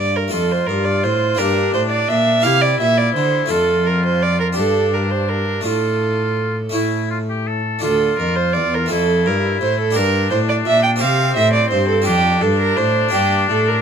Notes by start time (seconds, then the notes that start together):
Already playing: G2 F4 D5
0.16 A#4
0.28 A3 F4 A4
0.32 F2 F4 A4
0.52 C5
0.67 G2 A#4
0.85 D5
1.03 A2 C5
1.35 A#3 D4 G4 A#4
1.40 G2
1.74 A2 C5
1.90 D5
2.08 A#2 E5
2.40 A#3 E4 G4 F5
2.45 C3 E4
2.62 D5
2.80 A#2 E5
2.98 D5
3.15 D3 C5
3.46 A3 F4 A4
3.50 F2 F4 A4
3.86 A#4
4.06 C5
4.23 D5
4.40 A#4
4.53 D4 G4
4.57 G2 A4
4.94 A#4
5.11 C5
5.29 A#4
5.61 A3 D4 F4
5.65 A2 F4 A4
6.69 A3 C#4 E4
6.74 A2 E4
7.10 F4
7.29 G4
7.47 A4
7.79 A3 D4 F4 A4
7.83 D2 F4
8.19 F2 A#4
8.36 C5
8.53 E2 D5
8.57 E2
8.74 A#4
8.86 A3 C4 F4
8.91 F2 E4 A4
9.26 G2 A#4
9.61 A2 C5
9.80 A4
9.91 D4 G4 A#4
9.95 G2 D4 A#4
10.31 A2 C5
10.49 D5
10.65 A#2 E5
10.83 G5
10.96 C4 G4 A#4
11.00 C3 C4 F5
11.36 A2 E5
11.53 D5
11.70 G2 C5
11.88 A4
12.02 C4 F4 G4 A4
12.06 F2 D4
12.41 G2 A4
12.59 A#4
12.77 A2 C5
13.09 A#3 D4 G4
13.14 G2
13.49 A2 A4
13.68 A#4